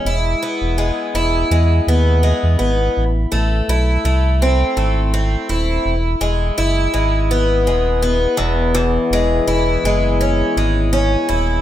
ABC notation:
X:1
M:4/4
L:1/16
Q:"Swing 16ths" 1/4=83
K:E
V:1 name="Twelve-string acoustic guitar"
E2 B,2 G,2 E2 G,2 B,2 G,2 B,2 | z2 A,2 E2 A,2 =C2 A,2 C2 E2 | z2 G,2 E2 G,2 B,2 G,2 B,2 E,,2 | E,,2 G,2 E2 G,2 C2 G,2 C2 E2 |]
V:2 name="Sub bass" clef=bass
E,,,2 z E,,,2 z E,,,2 E,,2 D,,3 E,, G,,,2 | A,,,2 A,,,2 B,,,2 =C,,4 G,,,4 D,,,2 | E,,,2 E,,,2 F,,,2 G,,,4 D,,,4 E,,,2- | E,,,2 E,,,2 E,,,2 F,,,4 G,,,4 D,,,2 |]